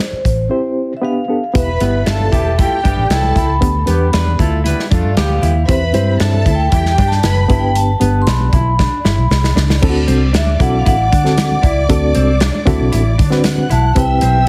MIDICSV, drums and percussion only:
0, 0, Header, 1, 2, 480
1, 0, Start_track
1, 0, Tempo, 517688
1, 1433, Time_signature, 4, 2, 24, 8
1, 13430, End_track
2, 0, Start_track
2, 0, Title_t, "Drums"
2, 232, Note_on_c, 9, 36, 74
2, 239, Note_on_c, 9, 42, 67
2, 325, Note_off_c, 9, 36, 0
2, 332, Note_off_c, 9, 42, 0
2, 1438, Note_on_c, 9, 36, 94
2, 1438, Note_on_c, 9, 42, 87
2, 1531, Note_off_c, 9, 36, 0
2, 1531, Note_off_c, 9, 42, 0
2, 1673, Note_on_c, 9, 42, 77
2, 1679, Note_on_c, 9, 62, 27
2, 1679, Note_on_c, 9, 63, 64
2, 1765, Note_off_c, 9, 42, 0
2, 1772, Note_off_c, 9, 62, 0
2, 1772, Note_off_c, 9, 63, 0
2, 1913, Note_on_c, 9, 42, 68
2, 1919, Note_on_c, 9, 38, 95
2, 2006, Note_off_c, 9, 42, 0
2, 2011, Note_off_c, 9, 38, 0
2, 2039, Note_on_c, 9, 63, 72
2, 2132, Note_off_c, 9, 63, 0
2, 2156, Note_on_c, 9, 36, 76
2, 2163, Note_on_c, 9, 64, 73
2, 2164, Note_on_c, 9, 42, 68
2, 2249, Note_off_c, 9, 36, 0
2, 2256, Note_off_c, 9, 64, 0
2, 2257, Note_off_c, 9, 42, 0
2, 2399, Note_on_c, 9, 42, 77
2, 2400, Note_on_c, 9, 36, 83
2, 2401, Note_on_c, 9, 62, 28
2, 2401, Note_on_c, 9, 63, 39
2, 2401, Note_on_c, 9, 64, 61
2, 2491, Note_off_c, 9, 42, 0
2, 2492, Note_off_c, 9, 36, 0
2, 2494, Note_off_c, 9, 62, 0
2, 2494, Note_off_c, 9, 63, 0
2, 2494, Note_off_c, 9, 64, 0
2, 2642, Note_on_c, 9, 36, 86
2, 2642, Note_on_c, 9, 62, 29
2, 2642, Note_on_c, 9, 63, 73
2, 2645, Note_on_c, 9, 42, 73
2, 2735, Note_off_c, 9, 36, 0
2, 2735, Note_off_c, 9, 62, 0
2, 2735, Note_off_c, 9, 63, 0
2, 2737, Note_off_c, 9, 42, 0
2, 2878, Note_on_c, 9, 42, 76
2, 2881, Note_on_c, 9, 63, 74
2, 2882, Note_on_c, 9, 38, 99
2, 2970, Note_off_c, 9, 42, 0
2, 2973, Note_off_c, 9, 63, 0
2, 2974, Note_off_c, 9, 38, 0
2, 3002, Note_on_c, 9, 63, 76
2, 3095, Note_off_c, 9, 63, 0
2, 3111, Note_on_c, 9, 62, 30
2, 3111, Note_on_c, 9, 64, 65
2, 3114, Note_on_c, 9, 36, 74
2, 3123, Note_on_c, 9, 42, 58
2, 3204, Note_off_c, 9, 62, 0
2, 3204, Note_off_c, 9, 64, 0
2, 3207, Note_off_c, 9, 36, 0
2, 3216, Note_off_c, 9, 42, 0
2, 3356, Note_on_c, 9, 36, 98
2, 3358, Note_on_c, 9, 42, 86
2, 3449, Note_off_c, 9, 36, 0
2, 3451, Note_off_c, 9, 42, 0
2, 3589, Note_on_c, 9, 42, 77
2, 3598, Note_on_c, 9, 62, 29
2, 3598, Note_on_c, 9, 63, 60
2, 3681, Note_off_c, 9, 42, 0
2, 3691, Note_off_c, 9, 62, 0
2, 3691, Note_off_c, 9, 63, 0
2, 3831, Note_on_c, 9, 42, 74
2, 3834, Note_on_c, 9, 62, 29
2, 3836, Note_on_c, 9, 38, 104
2, 3923, Note_off_c, 9, 42, 0
2, 3927, Note_off_c, 9, 62, 0
2, 3929, Note_off_c, 9, 38, 0
2, 3956, Note_on_c, 9, 63, 67
2, 4049, Note_off_c, 9, 63, 0
2, 4071, Note_on_c, 9, 36, 76
2, 4074, Note_on_c, 9, 62, 34
2, 4074, Note_on_c, 9, 64, 70
2, 4082, Note_on_c, 9, 42, 67
2, 4164, Note_off_c, 9, 36, 0
2, 4167, Note_off_c, 9, 62, 0
2, 4167, Note_off_c, 9, 64, 0
2, 4174, Note_off_c, 9, 42, 0
2, 4313, Note_on_c, 9, 63, 46
2, 4313, Note_on_c, 9, 64, 62
2, 4318, Note_on_c, 9, 42, 84
2, 4406, Note_off_c, 9, 63, 0
2, 4406, Note_off_c, 9, 64, 0
2, 4410, Note_off_c, 9, 42, 0
2, 4447, Note_on_c, 9, 38, 39
2, 4539, Note_off_c, 9, 38, 0
2, 4552, Note_on_c, 9, 62, 29
2, 4552, Note_on_c, 9, 63, 68
2, 4557, Note_on_c, 9, 36, 89
2, 4560, Note_on_c, 9, 42, 75
2, 4645, Note_off_c, 9, 62, 0
2, 4645, Note_off_c, 9, 63, 0
2, 4650, Note_off_c, 9, 36, 0
2, 4653, Note_off_c, 9, 42, 0
2, 4792, Note_on_c, 9, 42, 81
2, 4793, Note_on_c, 9, 63, 77
2, 4796, Note_on_c, 9, 38, 117
2, 4885, Note_off_c, 9, 42, 0
2, 4885, Note_off_c, 9, 63, 0
2, 4889, Note_off_c, 9, 38, 0
2, 4910, Note_on_c, 9, 63, 66
2, 5003, Note_off_c, 9, 63, 0
2, 5023, Note_on_c, 9, 62, 27
2, 5023, Note_on_c, 9, 64, 62
2, 5035, Note_on_c, 9, 42, 58
2, 5115, Note_off_c, 9, 62, 0
2, 5115, Note_off_c, 9, 64, 0
2, 5128, Note_off_c, 9, 42, 0
2, 5272, Note_on_c, 9, 36, 109
2, 5274, Note_on_c, 9, 42, 89
2, 5274, Note_on_c, 9, 62, 32
2, 5365, Note_off_c, 9, 36, 0
2, 5366, Note_off_c, 9, 62, 0
2, 5367, Note_off_c, 9, 42, 0
2, 5506, Note_on_c, 9, 42, 80
2, 5516, Note_on_c, 9, 62, 28
2, 5516, Note_on_c, 9, 63, 61
2, 5599, Note_off_c, 9, 42, 0
2, 5609, Note_off_c, 9, 62, 0
2, 5609, Note_off_c, 9, 63, 0
2, 5747, Note_on_c, 9, 42, 68
2, 5750, Note_on_c, 9, 62, 29
2, 5752, Note_on_c, 9, 38, 101
2, 5839, Note_off_c, 9, 42, 0
2, 5843, Note_off_c, 9, 62, 0
2, 5845, Note_off_c, 9, 38, 0
2, 5874, Note_on_c, 9, 63, 67
2, 5967, Note_off_c, 9, 63, 0
2, 5988, Note_on_c, 9, 36, 75
2, 5994, Note_on_c, 9, 42, 68
2, 5999, Note_on_c, 9, 62, 38
2, 5999, Note_on_c, 9, 64, 71
2, 6081, Note_off_c, 9, 36, 0
2, 6087, Note_off_c, 9, 42, 0
2, 6092, Note_off_c, 9, 62, 0
2, 6092, Note_off_c, 9, 64, 0
2, 6229, Note_on_c, 9, 42, 78
2, 6232, Note_on_c, 9, 36, 85
2, 6238, Note_on_c, 9, 63, 42
2, 6238, Note_on_c, 9, 64, 63
2, 6322, Note_off_c, 9, 42, 0
2, 6325, Note_off_c, 9, 36, 0
2, 6331, Note_off_c, 9, 63, 0
2, 6331, Note_off_c, 9, 64, 0
2, 6357, Note_on_c, 9, 38, 40
2, 6450, Note_off_c, 9, 38, 0
2, 6474, Note_on_c, 9, 42, 72
2, 6475, Note_on_c, 9, 36, 92
2, 6476, Note_on_c, 9, 63, 67
2, 6567, Note_off_c, 9, 36, 0
2, 6567, Note_off_c, 9, 42, 0
2, 6569, Note_off_c, 9, 63, 0
2, 6597, Note_on_c, 9, 38, 33
2, 6690, Note_off_c, 9, 38, 0
2, 6706, Note_on_c, 9, 42, 83
2, 6710, Note_on_c, 9, 38, 105
2, 6714, Note_on_c, 9, 62, 32
2, 6714, Note_on_c, 9, 63, 71
2, 6799, Note_off_c, 9, 42, 0
2, 6803, Note_off_c, 9, 38, 0
2, 6806, Note_off_c, 9, 62, 0
2, 6806, Note_off_c, 9, 63, 0
2, 6837, Note_on_c, 9, 63, 70
2, 6930, Note_off_c, 9, 63, 0
2, 6947, Note_on_c, 9, 62, 33
2, 6947, Note_on_c, 9, 64, 67
2, 6951, Note_on_c, 9, 36, 91
2, 6954, Note_on_c, 9, 42, 61
2, 7040, Note_off_c, 9, 62, 0
2, 7040, Note_off_c, 9, 64, 0
2, 7044, Note_off_c, 9, 36, 0
2, 7047, Note_off_c, 9, 42, 0
2, 7190, Note_on_c, 9, 42, 101
2, 7192, Note_on_c, 9, 62, 33
2, 7283, Note_off_c, 9, 42, 0
2, 7285, Note_off_c, 9, 62, 0
2, 7425, Note_on_c, 9, 42, 79
2, 7428, Note_on_c, 9, 62, 27
2, 7428, Note_on_c, 9, 63, 54
2, 7518, Note_off_c, 9, 42, 0
2, 7521, Note_off_c, 9, 62, 0
2, 7521, Note_off_c, 9, 63, 0
2, 7666, Note_on_c, 9, 42, 75
2, 7671, Note_on_c, 9, 38, 106
2, 7758, Note_off_c, 9, 42, 0
2, 7764, Note_off_c, 9, 38, 0
2, 7787, Note_on_c, 9, 63, 69
2, 7880, Note_off_c, 9, 63, 0
2, 7906, Note_on_c, 9, 36, 83
2, 7908, Note_on_c, 9, 42, 74
2, 7909, Note_on_c, 9, 64, 74
2, 7999, Note_off_c, 9, 36, 0
2, 8001, Note_off_c, 9, 42, 0
2, 8002, Note_off_c, 9, 64, 0
2, 8149, Note_on_c, 9, 62, 29
2, 8149, Note_on_c, 9, 63, 44
2, 8149, Note_on_c, 9, 64, 57
2, 8151, Note_on_c, 9, 36, 81
2, 8152, Note_on_c, 9, 38, 60
2, 8242, Note_off_c, 9, 62, 0
2, 8242, Note_off_c, 9, 63, 0
2, 8242, Note_off_c, 9, 64, 0
2, 8244, Note_off_c, 9, 36, 0
2, 8245, Note_off_c, 9, 38, 0
2, 8388, Note_on_c, 9, 63, 74
2, 8393, Note_on_c, 9, 38, 65
2, 8481, Note_off_c, 9, 63, 0
2, 8486, Note_off_c, 9, 38, 0
2, 8629, Note_on_c, 9, 63, 72
2, 8636, Note_on_c, 9, 38, 88
2, 8721, Note_off_c, 9, 63, 0
2, 8728, Note_off_c, 9, 38, 0
2, 8748, Note_on_c, 9, 63, 74
2, 8755, Note_on_c, 9, 38, 72
2, 8841, Note_off_c, 9, 63, 0
2, 8848, Note_off_c, 9, 38, 0
2, 8857, Note_on_c, 9, 62, 31
2, 8857, Note_on_c, 9, 64, 62
2, 8873, Note_on_c, 9, 38, 88
2, 8950, Note_off_c, 9, 62, 0
2, 8950, Note_off_c, 9, 64, 0
2, 8966, Note_off_c, 9, 38, 0
2, 8996, Note_on_c, 9, 38, 92
2, 9089, Note_off_c, 9, 38, 0
2, 9108, Note_on_c, 9, 62, 35
2, 9110, Note_on_c, 9, 49, 95
2, 9111, Note_on_c, 9, 36, 104
2, 9201, Note_off_c, 9, 62, 0
2, 9203, Note_off_c, 9, 49, 0
2, 9204, Note_off_c, 9, 36, 0
2, 9346, Note_on_c, 9, 42, 77
2, 9346, Note_on_c, 9, 62, 29
2, 9346, Note_on_c, 9, 63, 61
2, 9439, Note_off_c, 9, 42, 0
2, 9439, Note_off_c, 9, 62, 0
2, 9439, Note_off_c, 9, 63, 0
2, 9588, Note_on_c, 9, 42, 73
2, 9593, Note_on_c, 9, 38, 116
2, 9680, Note_off_c, 9, 42, 0
2, 9686, Note_off_c, 9, 38, 0
2, 9703, Note_on_c, 9, 63, 67
2, 9796, Note_off_c, 9, 63, 0
2, 9828, Note_on_c, 9, 64, 77
2, 9829, Note_on_c, 9, 36, 84
2, 9836, Note_on_c, 9, 42, 75
2, 9921, Note_off_c, 9, 36, 0
2, 9921, Note_off_c, 9, 64, 0
2, 9929, Note_off_c, 9, 42, 0
2, 10070, Note_on_c, 9, 62, 30
2, 10070, Note_on_c, 9, 63, 49
2, 10070, Note_on_c, 9, 64, 64
2, 10073, Note_on_c, 9, 36, 81
2, 10074, Note_on_c, 9, 42, 80
2, 10162, Note_off_c, 9, 62, 0
2, 10162, Note_off_c, 9, 63, 0
2, 10162, Note_off_c, 9, 64, 0
2, 10166, Note_off_c, 9, 36, 0
2, 10166, Note_off_c, 9, 42, 0
2, 10313, Note_on_c, 9, 62, 32
2, 10313, Note_on_c, 9, 63, 76
2, 10315, Note_on_c, 9, 36, 86
2, 10318, Note_on_c, 9, 42, 76
2, 10405, Note_off_c, 9, 62, 0
2, 10405, Note_off_c, 9, 63, 0
2, 10408, Note_off_c, 9, 36, 0
2, 10411, Note_off_c, 9, 42, 0
2, 10437, Note_on_c, 9, 38, 30
2, 10529, Note_off_c, 9, 38, 0
2, 10548, Note_on_c, 9, 42, 85
2, 10552, Note_on_c, 9, 38, 102
2, 10557, Note_on_c, 9, 62, 31
2, 10557, Note_on_c, 9, 63, 67
2, 10640, Note_off_c, 9, 42, 0
2, 10644, Note_off_c, 9, 38, 0
2, 10650, Note_off_c, 9, 62, 0
2, 10650, Note_off_c, 9, 63, 0
2, 10672, Note_on_c, 9, 63, 78
2, 10765, Note_off_c, 9, 63, 0
2, 10786, Note_on_c, 9, 64, 60
2, 10787, Note_on_c, 9, 36, 88
2, 10792, Note_on_c, 9, 42, 60
2, 10879, Note_off_c, 9, 36, 0
2, 10879, Note_off_c, 9, 64, 0
2, 10885, Note_off_c, 9, 42, 0
2, 11029, Note_on_c, 9, 42, 94
2, 11030, Note_on_c, 9, 36, 105
2, 11122, Note_off_c, 9, 42, 0
2, 11123, Note_off_c, 9, 36, 0
2, 11262, Note_on_c, 9, 42, 85
2, 11275, Note_on_c, 9, 63, 63
2, 11355, Note_off_c, 9, 42, 0
2, 11368, Note_off_c, 9, 63, 0
2, 11501, Note_on_c, 9, 42, 76
2, 11507, Note_on_c, 9, 38, 108
2, 11594, Note_off_c, 9, 42, 0
2, 11599, Note_off_c, 9, 38, 0
2, 11634, Note_on_c, 9, 63, 69
2, 11727, Note_off_c, 9, 63, 0
2, 11745, Note_on_c, 9, 36, 82
2, 11748, Note_on_c, 9, 42, 71
2, 11758, Note_on_c, 9, 64, 78
2, 11837, Note_off_c, 9, 36, 0
2, 11841, Note_off_c, 9, 42, 0
2, 11851, Note_off_c, 9, 64, 0
2, 11985, Note_on_c, 9, 42, 79
2, 11996, Note_on_c, 9, 62, 30
2, 11996, Note_on_c, 9, 63, 46
2, 11996, Note_on_c, 9, 64, 64
2, 12078, Note_off_c, 9, 42, 0
2, 12089, Note_off_c, 9, 62, 0
2, 12089, Note_off_c, 9, 63, 0
2, 12089, Note_off_c, 9, 64, 0
2, 12231, Note_on_c, 9, 36, 96
2, 12231, Note_on_c, 9, 42, 77
2, 12235, Note_on_c, 9, 63, 70
2, 12324, Note_off_c, 9, 36, 0
2, 12324, Note_off_c, 9, 42, 0
2, 12327, Note_off_c, 9, 63, 0
2, 12346, Note_on_c, 9, 38, 35
2, 12439, Note_off_c, 9, 38, 0
2, 12460, Note_on_c, 9, 42, 81
2, 12464, Note_on_c, 9, 38, 112
2, 12469, Note_on_c, 9, 63, 76
2, 12553, Note_off_c, 9, 42, 0
2, 12557, Note_off_c, 9, 38, 0
2, 12562, Note_off_c, 9, 63, 0
2, 12587, Note_on_c, 9, 63, 71
2, 12680, Note_off_c, 9, 63, 0
2, 12697, Note_on_c, 9, 62, 29
2, 12697, Note_on_c, 9, 64, 62
2, 12710, Note_on_c, 9, 42, 71
2, 12790, Note_off_c, 9, 62, 0
2, 12790, Note_off_c, 9, 64, 0
2, 12803, Note_off_c, 9, 42, 0
2, 12943, Note_on_c, 9, 42, 97
2, 12945, Note_on_c, 9, 36, 102
2, 12949, Note_on_c, 9, 62, 34
2, 13035, Note_off_c, 9, 42, 0
2, 13038, Note_off_c, 9, 36, 0
2, 13042, Note_off_c, 9, 62, 0
2, 13176, Note_on_c, 9, 42, 76
2, 13183, Note_on_c, 9, 62, 30
2, 13183, Note_on_c, 9, 63, 60
2, 13269, Note_off_c, 9, 42, 0
2, 13276, Note_off_c, 9, 62, 0
2, 13276, Note_off_c, 9, 63, 0
2, 13430, End_track
0, 0, End_of_file